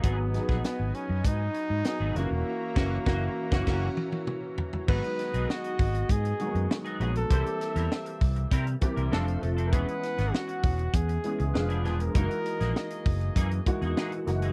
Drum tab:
CC |----------------|--x-----x-------|x---------------|----------------|
HH |x-x-x-x-x-x-x-x-|----------------|-xxx-xoxxxxx-xxx|xxxx-xoxxxxx-xxx|
SD |--ooo-------o-o-|--o-o--oo-------|--o-o-------o---|--ooo-------o---|
T1 |----------------|----------oo----|----------------|----------------|
T2 |----------------|------------o---|----------------|----------------|
FT |----------------|--------------oo|----------------|----------------|
BD |o--o----o-------|--o-o--oo-------|o-----o-o-------|o-----o-o-o-----|

CC |----------------|----------------|
HH |xxxx-xoxxxxx-xxx|xxxx-xoxxxxx-xxx|
SD |--ooo-------o-o-|---oo-------o-o-|
T1 |----------------|----------------|
T2 |----------------|----------------|
FT |----------------|----------------|
BD |o-----o-o-------|o-----o-o-o-----|